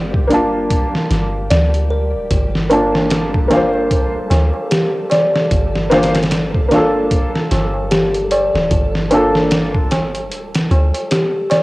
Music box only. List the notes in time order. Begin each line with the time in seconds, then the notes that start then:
Already playing: F4
1.11 F4
1.50 D5
1.90 A#4
2.31 F4
4.31 F4
4.71 G4
5.11 D5
5.51 F4
7.51 F4
7.91 G4
8.31 D5
8.71 F4
10.71 F4
11.11 G4
11.51 D5